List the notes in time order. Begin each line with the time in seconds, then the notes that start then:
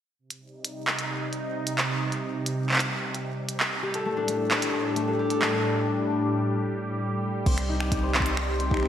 0.19 C3
0.30 closed hi-hat
0.36 G3
0.41 D#4
0.65 closed hi-hat
0.87 clap
0.99 closed hi-hat
1.33 closed hi-hat
1.67 closed hi-hat
1.78 clap
1.83 G4
2.12 closed hi-hat
2.46 closed hi-hat
2.69 clap
2.71 clap
2.74 clap
2.76 clap
2.78 clap, closed hi-hat
3.15 closed hi-hat
3.49 closed hi-hat
3.60 clap
3.83 A2 G4
3.94 A4, closed hi-hat
4.05 A3
4.17 D4
4.28 A3, closed hi-hat
4.49 D4, clap
4.62 G4, closed hi-hat
4.85 A4
4.96 A3, closed hi-hat
5.08 D4
5.19 G4
5.30 A4, closed hi-hat
5.42 A3, clap
5.53 D4
7.46 C2 C3 C4, kick, crash
7.58 finger snap, closed hi-hat
7.69 D#4
7.80 G4, finger snap
7.92 kick, closed hi-hat
8.03 C5
8.14 C4, finger snap, clap
8.18 finger snap, kick
8.22 D#4, finger snap, closed hi-hat
8.37 G4, finger snap
8.49 C5
8.60 C4, closed hi-hat
8.71 D#4, finger snap, kick
8.76 D#4, finger snap
8.80 C4, finger snap
8.83 finger snap